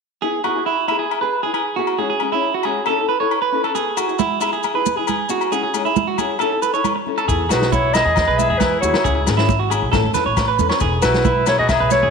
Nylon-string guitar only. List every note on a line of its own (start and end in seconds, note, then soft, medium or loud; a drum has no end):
0.23 0.36 B3 medium
0.23 0.37 E4 medium
0.23 0.37 G#4 medium
0.45 0.56 B3 medium
0.45 0.57 E4 medium
0.45 0.55 G#4 medium
0.56 0.70 E4 soft
0.56 0.69 G#4 soft
0.89 1.03 B3 soft
0.89 1.03 E4 soft
0.89 1.04 G#4 medium
1.22 1.35 G#4 medium
1.22 muted nylon-string guitar stroke soft
1.44 1.58 E4 soft
1.44 1.57 G#4 medium
1.77 1.91 B3 medium
1.77 1.91 E4 medium
1.77 1.91 G#4 medium
1.98 2.12 G#3 medium
1.98 2.12 C#4 medium
1.98 2.13 E4 medium
1.98 2.13 G#4 medium
2.21 2.32 G#3 soft
2.21 2.33 C#4 medium
2.21 2.32 E4 medium
2.21 2.31 G#4 medium
2.32 2.46 C#4 soft
2.32 2.46 E4 soft
2.32 2.45 G#4 soft
2.65 2.79 G#3 soft
2.65 2.79 C#4 medium
2.65 2.80 G#4 medium
2.88 2.99 C#4 medium
2.88 2.99 E4 medium
2.88 2.98 A4 medium
2.99 3.13 E4 soft
2.99 3.12 A4 soft
3.20 3.34 E4 soft
3.20 3.33 A4 soft
3.52 3.66 C#4 medium
3.52 3.67 E4 medium
3.52 3.67 A4 medium
3.76 3.89 B3 medium
3.76 3.90 G#4 medium
3.76 muted nylon-string guitar stroke medium
3.98 4.09 E4 medium
3.98 4.07 G#4 medium
4.08 4.23 E4 soft
4.08 4.22 G#4 soft
4.40 4.55 B3 soft
4.40 4.55 E4 medium
4.40 4.56 G#4 medium
4.74 4.89 E4 soft
4.74 4.88 G#4 soft
4.96 5.11 E4 soft
4.96 5.09 G#4 soft
5.29 5.43 B3 medium
5.29 5.43 E4 medium
5.29 5.44 G#4 medium
5.51 5.65 G#3 medium
5.51 5.65 C#4 medium
5.51 5.66 E4 medium
5.51 5.66 G#4 medium
5.74 5.85 G#3 medium
5.74 5.86 C#4 medium
5.74 5.86 E4 medium
5.74 5.85 G#4 medium
5.86 5.99 E4 soft
5.86 5.99 G#4 soft
6.20 6.32 C#4 medium
6.20 6.33 E4 medium
6.20 6.33 G#4 medium
6.41 6.52 C#4 medium
6.41 6.52 E4 medium
6.41 6.50 A4 medium
6.52 6.65 E4 soft
6.52 6.65 A4 medium
6.74 6.88 E4 soft
6.74 6.87 A4 soft
7.06 7.20 C#4 medium
7.06 7.20 E4 medium
7.06 7.21 A4 medium
7.29 7.42 B3 medium
7.29 7.43 E4 medium
7.29 7.43 G#4 medium
7.50 7.62 B3 soft
7.50 7.62 E4 medium
7.50 7.60 G#4 medium
7.61 7.76 E4 soft
7.61 7.75 G#4 soft
7.94 8.08 B3 medium
7.94 8.08 E4 medium
7.94 8.09 G#4 medium
8.38 8.52 B3 medium
8.38 8.52 E4 medium
8.38 8.53 G#4 medium
8.82 8.96 B3 medium
8.82 8.97 E4 medium
8.82 8.97 G#4 medium
9.04 9.18 G#3 medium
9.04 9.18 C#4 medium
9.04 9.18 E4 medium
9.04 9.18 G#4 medium
9.26 9.38 G#3 medium
9.26 9.38 C#4 medium
9.26 9.37 E4 medium
9.26 9.36 G#4 medium
9.37 9.52 C#4 soft
9.37 9.51 E4 soft
9.37 9.51 G#4 medium
9.69 9.84 G#3 medium
9.69 9.84 C#4 medium
9.69 9.84 E4 medium
9.69 9.84 G#4 medium
9.91 10.05 C#4 medium
9.91 10.06 E4 medium
9.91 10.06 A4 medium
10.14 10.28 C#4 medium
10.14 10.29 E4 medium
10.14 10.29 A4 medium
10.58 10.72 C#4 medium
10.58 10.73 E4 medium
10.58 10.73 A4 medium
10.79 10.94 B3 medium
10.79 10.94 E4 medium
10.79 10.95 G#4 medium
11.02 11.14 B3 soft
11.02 11.14 E4 medium
11.02 11.13 G#4 medium
11.14 11.28 E4 soft
11.14 11.27 G#4 soft
11.47 11.61 B3 soft
11.47 11.61 E4 medium
11.47 11.62 G#4 medium
11.92 12.05 B3 medium
11.92 12.06 E4 medium
11.92 12.06 G#4 medium